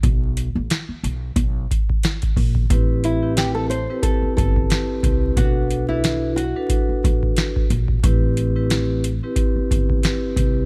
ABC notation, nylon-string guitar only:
X:1
M:4/4
L:1/16
Q:"Swing 16ths" 1/4=90
K:Ador
V:1 name="Nylon-string guitar"
z16 | z2 E2 G A c2 A2 A6 | F3 E3 F8- F2 | z16 |]